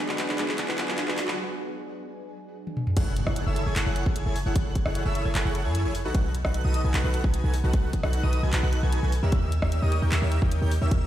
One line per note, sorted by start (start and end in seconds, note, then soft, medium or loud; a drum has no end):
0.00 0.35 F#3 medium
0.00 2.93 F#3 medium
0.00 0.35 G#3 medium
0.00 0.36 B3 medium
0.00 2.93 B3 medium
0.00 0.37 D4 medium
0.00 2.93 D4 medium
0.00 0.37 G#4 loud
0.00 2.93 G#4 loud
0.00 riser medium
0.09 0.26 D4 loud
0.09 0.26 F#4 medium
0.09 0.26 G#4 medium
0.09 0.26 B4 medium
0.09 0.26 F#5 loud
0.09 clap medium
0.18 clap medium
0.18 closed hi-hat medium
0.29 0.46 D4 loud
0.29 0.46 F#4 medium
0.29 0.46 G#4 medium
0.29 0.46 B4 medium
0.29 0.46 D5 loud
0.29 clap medium
0.37 0.43 F#3 medium
0.37 0.44 G#3 medium
0.37 0.44 B3 medium
0.37 0.44 D4 medium
0.37 0.44 G#4 medium
0.37 clap loud
0.37 closed hi-hat medium
0.48 0.56 D4 medium
0.48 0.56 F#4 medium
0.48 0.56 G#4 medium
0.48 0.56 B4 medium
0.48 0.56 G#5 medium
0.48 clap medium
0.58 0.66 D4 medium
0.58 0.66 F#4 medium
0.58 0.66 G#4 medium
0.58 0.66 B4 medium
0.58 0.66 F#5 medium
0.58 clap loud
0.58 closed hi-hat medium
0.68 0.86 D4 loud
0.68 0.86 F#4 medium
0.68 0.86 G#4 medium
0.68 0.86 B4 medium
0.68 0.86 F#5 loud
0.68 clap medium
0.78 clap medium
0.78 closed hi-hat medium
0.88 1.06 D4 medium
0.88 1.06 F#4 medium
0.88 1.06 G#4 medium
0.88 1.06 B4 medium
0.88 1.06 G#5 medium
0.88 clap medium
0.98 clap loud
0.98 closed hi-hat medium
1.08 1.18 D4 medium
1.08 1.18 F#4 medium
1.08 1.18 G#4 medium
1.08 1.18 B4 medium
1.08 1.18 G#5 medium
1.08 clap medium
1.18 clap loud
1.18 open hi-hat loud
1.28 1.36 D4 medium
1.28 1.36 F#4 medium
1.28 1.36 G#4 medium
1.28 1.36 B4 medium
1.28 1.36 F#5 medium
1.28 clap medium
2.67 high tom soft
2.77 mid tom medium
2.87 mid tom medium
2.97 3.25 F#1 loud
2.97 3.13 E4 medium
2.97 3.13 G#4 medium
2.97 3.13 A4 medium
2.97 3.13 C#5 medium
2.97 3.13 F#5 loud
2.97 3.13 F#6 loud
2.97 kick loud
2.97 closed hi-hat medium
2.97 crash loud
2.97 impact medium
3.16 closed hi-hat medium
3.27 3.45 F#1 loud
3.27 3.44 E4 loud
3.27 3.44 G#4 medium
3.27 3.44 A4 medium
3.27 3.44 C#5 medium
3.27 3.44 F#5 loud
3.27 3.44 F#6 loud
3.27 kick medium
3.27 cross-stick medium
3.36 closed hi-hat medium
3.46 3.64 F#1 loud
3.46 3.64 E4 loud
3.46 3.64 G#4 medium
3.46 3.64 A4 medium
3.46 3.64 C#5 medium
3.46 3.64 E5 loud
3.46 3.64 E6 loud
3.56 closed hi-hat medium
3.66 3.74 F#1 medium
3.66 3.74 E4 medium
3.66 3.74 G#4 medium
3.66 3.74 A4 medium
3.66 3.74 C#5 medium
3.66 3.74 G#5 medium
3.66 3.74 G#6 medium
3.76 3.84 F#1 loud
3.76 3.84 E4 medium
3.76 3.84 G#4 medium
3.76 3.84 A4 medium
3.76 3.84 C#5 medium
3.76 3.84 F#5 medium
3.76 3.84 F#6 medium
3.76 clap loud
3.76 closed hi-hat medium
3.86 4.04 F#1 loud
3.86 4.04 E4 medium
3.86 4.04 G#4 medium
3.86 4.04 A4 medium
3.86 4.04 C#5 medium
3.86 4.04 F#5 loud
3.86 4.04 F#6 loud
3.96 closed hi-hat medium
4.06 4.24 F#1 loud
4.06 4.24 G#6 medium
4.06 kick loud
4.16 closed hi-hat medium
4.26 4.44 F#1 loud
4.26 4.36 E4 medium
4.26 4.36 G#4 medium
4.26 4.36 A4 medium
4.26 4.36 C#5 medium
4.26 4.36 G#5 medium
4.26 4.36 G#6 loud
4.36 open hi-hat medium
4.46 4.54 F#1 loud
4.46 4.54 E4 medium
4.46 4.54 G#4 medium
4.46 4.54 A4 medium
4.46 4.54 C#5 medium
4.46 4.54 F#5 medium
4.46 4.54 F#6 medium
4.56 4.84 F#1 medium
4.56 4.72 F#6 loud
4.56 kick loud
4.56 closed hi-hat medium
4.75 kick medium
4.75 closed hi-hat medium
4.86 5.04 F#1 loud
4.86 5.03 E4 loud
4.86 5.03 G#4 medium
4.86 5.03 A4 medium
4.86 5.03 C#5 medium
4.86 5.03 F#5 loud
4.86 5.03 F#6 loud
4.86 cross-stick medium
4.95 closed hi-hat medium
5.05 5.23 F#1 loud
5.05 5.23 E4 loud
5.05 5.23 G#4 medium
5.05 5.23 A4 medium
5.05 5.23 C#5 medium
5.05 5.23 E5 loud
5.05 5.23 E6 loud
5.15 closed hi-hat medium
5.25 5.33 F#1 loud
5.25 5.33 E4 medium
5.25 5.33 G#4 medium
5.25 5.33 A4 medium
5.25 5.33 C#5 medium
5.25 5.33 G#5 medium
5.25 5.33 G#6 medium
5.35 5.43 F#1 loud
5.35 5.43 E4 medium
5.35 5.43 G#4 medium
5.35 5.43 A4 medium
5.35 5.43 C#5 medium
5.35 5.43 F#5 medium
5.35 5.43 F#6 medium
5.35 clap loud
5.35 closed hi-hat medium
5.45 5.67 F#1 loud
5.45 5.63 E4 loud
5.45 5.63 G#4 medium
5.45 5.63 A4 medium
5.45 5.63 C#5 medium
5.45 5.63 F#5 loud
5.45 5.63 F#6 loud
5.55 closed hi-hat medium
5.65 5.86 F#2 loud
5.65 5.83 E4 medium
5.65 5.83 G#4 medium
5.65 5.83 A4 medium
5.65 5.83 C#5 medium
5.65 5.83 G#5 medium
5.65 5.83 G#6 medium
5.75 closed hi-hat medium
5.85 6.06 F#1 loud
5.85 5.94 E4 medium
5.85 5.94 G#4 medium
5.85 5.94 A4 medium
5.85 5.94 C#5 medium
5.85 5.94 G#5 medium
5.85 5.94 G#6 loud
5.95 open hi-hat medium
6.05 6.13 B1 medium
6.05 6.13 D#4 medium
6.05 6.13 F#4 medium
6.05 6.13 A4 medium
6.05 6.13 B4 medium
6.05 6.13 F#5 medium
6.05 6.13 F#6 medium
6.15 6.43 B1 loud
6.15 6.31 D#4 medium
6.15 6.31 F#4 medium
6.15 6.31 A4 medium
6.15 6.31 B4 medium
6.15 6.31 F#5 loud
6.15 6.31 F#6 loud
6.15 kick loud
6.15 closed hi-hat medium
6.35 closed hi-hat medium
6.45 6.62 B1 loud
6.45 6.62 D#4 loud
6.45 6.62 F#4 medium
6.45 6.62 A4 medium
6.45 6.62 B4 medium
6.45 6.62 F#5 loud
6.45 6.62 F#6 loud
6.45 kick medium
6.45 cross-stick medium
6.54 closed hi-hat medium
6.65 6.82 B1 loud
6.65 6.82 D#4 medium
6.65 6.82 F#4 medium
6.65 6.82 A4 medium
6.65 6.82 B4 medium
6.65 6.82 D#5 loud
6.65 6.82 D#6 loud
6.74 closed hi-hat medium
6.84 6.92 B1 loud
6.84 6.92 D#4 medium
6.84 6.92 F#4 medium
6.84 6.92 A4 medium
6.84 6.92 B4 medium
6.84 6.92 G#5 medium
6.84 6.92 G#6 medium
6.94 7.02 B1 loud
6.94 7.02 D#4 medium
6.94 7.02 F#4 medium
6.94 7.02 A4 medium
6.94 7.02 B4 medium
6.94 7.02 F#5 medium
6.94 7.02 F#6 medium
6.94 clap loud
6.94 closed hi-hat medium
7.04 7.22 B1 medium
7.04 7.22 D#4 loud
7.04 7.22 F#4 medium
7.04 7.22 A4 medium
7.04 7.22 B4 medium
7.04 7.22 F#5 loud
7.04 7.22 F#6 loud
7.14 closed hi-hat medium
7.24 7.42 B1 loud
7.24 7.42 G#6 medium
7.24 kick loud
7.34 closed hi-hat medium
7.44 7.62 B1 loud
7.44 7.54 D#4 medium
7.44 7.54 F#4 medium
7.44 7.54 A4 medium
7.44 7.54 B4 medium
7.44 7.54 G#5 loud
7.44 7.54 G#6 loud
7.54 open hi-hat medium
7.64 7.72 B1 loud
7.64 7.72 D#4 medium
7.64 7.72 F#4 medium
7.64 7.72 A4 medium
7.64 7.72 B4 medium
7.64 7.72 F#5 medium
7.64 7.72 F#6 medium
7.73 8.02 B1 loud
7.73 7.90 F#6 loud
7.73 kick loud
7.73 closed hi-hat medium
7.93 kick medium
7.93 closed hi-hat medium
8.03 8.21 B1 loud
8.03 8.21 D#4 loud
8.03 8.21 F#4 medium
8.03 8.21 A4 loud
8.03 8.21 B4 loud
8.03 8.21 F#5 loud
8.03 8.21 F#6 loud
8.03 cross-stick medium
8.13 closed hi-hat medium
8.23 8.41 B1 loud
8.23 8.41 D#4 loud
8.23 8.41 F#4 medium
8.23 8.41 A4 medium
8.23 8.41 B4 medium
8.23 8.41 D#5 loud
8.23 8.41 D#6 loud
8.33 closed hi-hat medium
8.43 8.51 B1 loud
8.43 8.51 D#4 medium
8.43 8.51 F#4 medium
8.43 8.51 A4 medium
8.43 8.51 B4 medium
8.43 8.51 G#5 medium
8.43 8.51 G#6 medium
8.53 8.61 B1 loud
8.53 8.61 D#4 medium
8.53 8.61 F#4 medium
8.53 8.61 A4 medium
8.53 8.61 B4 medium
8.53 8.61 F#5 medium
8.53 8.61 F#6 medium
8.53 clap loud
8.53 closed hi-hat medium
8.63 8.81 B1 loud
8.63 8.81 D#4 medium
8.63 8.81 F#4 medium
8.63 8.81 A4 medium
8.63 8.81 B4 medium
8.63 8.81 F#5 loud
8.63 8.81 F#6 loud
8.73 closed hi-hat medium
8.83 9.01 B1 loud
8.83 9.00 D#4 medium
8.83 9.00 F#4 medium
8.83 9.00 A4 medium
8.83 9.00 B4 medium
8.83 9.00 G#5 medium
8.83 9.01 G#6 medium
8.93 closed hi-hat medium
9.03 9.21 B1 medium
9.03 9.11 D#4 medium
9.03 9.11 F#4 medium
9.03 9.11 A4 medium
9.03 9.11 B4 medium
9.03 9.11 G#5 medium
9.03 9.11 G#6 loud
9.12 open hi-hat medium
9.23 9.31 D#2 loud
9.23 9.31 D#4 medium
9.23 9.31 G4 medium
9.23 9.31 A#4 medium
9.23 9.31 C#5 medium
9.23 9.31 E5 medium
9.23 9.31 E6 medium
9.32 9.60 D#2 medium
9.32 9.49 D#4 medium
9.32 9.49 G4 medium
9.32 9.49 A#4 medium
9.32 9.49 C#5 medium
9.32 9.49 E5 loud
9.32 9.49 E6 loud
9.32 kick loud
9.32 closed hi-hat medium
9.52 closed hi-hat medium
9.62 9.80 D#2 loud
9.62 9.80 D#4 loud
9.62 9.80 G4 medium
9.62 9.80 A#4 medium
9.62 9.80 C#5 medium
9.62 9.80 E5 loud
9.62 9.80 E6 loud
9.62 kick medium
9.62 cross-stick medium
9.72 closed hi-hat medium
9.82 10.00 D#2 loud
9.82 10.00 D#4 loud
9.82 10.00 G4 medium
9.82 10.00 A#4 medium
9.82 10.00 C#5 medium
9.82 10.00 D#5 loud
9.82 10.00 D#6 loud
9.92 closed hi-hat medium
10.02 10.10 D#2 loud
10.02 10.10 D#4 medium
10.02 10.10 G4 medium
10.02 10.10 A#4 medium
10.02 10.10 C#5 medium
10.02 10.10 G5 medium
10.02 10.10 G6 medium
10.12 10.20 D#2 loud
10.12 10.20 D#4 medium
10.12 10.20 G4 medium
10.12 10.20 A#4 medium
10.12 10.20 C#5 medium
10.12 10.20 E5 medium
10.12 10.20 E6 medium
10.12 clap loud
10.12 closed hi-hat medium
10.22 10.40 D#2 medium
10.22 10.39 D#4 loud
10.22 10.39 G4 medium
10.22 10.39 A#4 medium
10.22 10.39 C#5 medium
10.22 10.39 E5 loud
10.22 10.40 E6 loud
10.32 closed hi-hat medium
10.42 10.60 D#2 loud
10.42 10.59 D#4 medium
10.42 10.59 G4 medium
10.42 10.59 A#4 medium
10.42 10.59 C#5 medium
10.42 10.59 G5 medium
10.42 10.59 G6 medium
10.42 kick loud
10.52 closed hi-hat medium
10.62 10.80 D#2 medium
10.62 10.72 D#4 medium
10.62 10.72 G4 medium
10.62 10.72 A#4 medium
10.62 10.72 C#5 medium
10.62 10.72 G5 medium
10.62 10.72 G6 loud
10.71 open hi-hat loud
10.82 10.89 D#2 medium
10.82 10.90 D#4 medium
10.82 10.90 G4 medium
10.82 10.90 A#4 medium
10.82 10.90 C#5 medium
10.82 10.90 E5 medium
10.82 10.90 E6 medium
10.91 11.07 D#2 loud
10.91 11.07 D#4 medium
10.91 11.07 A#4 medium
10.91 11.07 E6 loud
10.91 kick loud
10.91 closed hi-hat medium